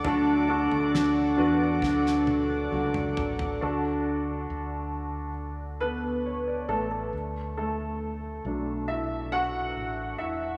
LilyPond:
<<
  \new Staff \with { instrumentName = "Analog synth pad" } { \time 4/4 \key d \major \tempo 4 = 68 <a' d'' fis'' d'''>1 | r1 | r1 | }
  \new Staff \with { instrumentName = "Grand piano" } { \time 4/4 \key d \major << { <d' fis' a'>8 <d' fis' a'>4 <d' fis' b'>2 r8 | <d' fis' a'>2 r8 <b b'>4 <a a'>8~ | <a a'>8 <a a'>4. <e' e''>8 <fis' fis''>4 <e' e''>8 | } \\ { d4. r2 r8 | d4. r4 a'16 b'16 cis''16 d''16 b'16 a'16~ | a'16 r4 r16 <fis a d'>4. r4 | } >> }
  \new Staff \with { instrumentName = "Nylon-string guitar" } { \time 4/4 \key d \major <d fis a d' fis'>2 <d fis a d' fis'>4 <fis a d' fis'>4 | r1 | r1 | }
  \new Staff \with { instrumentName = "Fretless electric bass" } { \clef bass \time 4/4 \key d \major d,8. d,8. e,8 d,4 cis,8 a,,8 | d,4 d,2~ d,8 a,,8 | d,4. b,,4. a,,8 e,,8 | }
  \new DrumStaff \with { instrumentName = "Drums" } \drummode { \time 4/4 tomfh8. tomfh16 sn4 <bd sn>16 sn16 tommh8 r16 toml16 tomfh16 tomfh16 | r4 r4 r4 r4 | r4 r4 r4 r4 | }
>>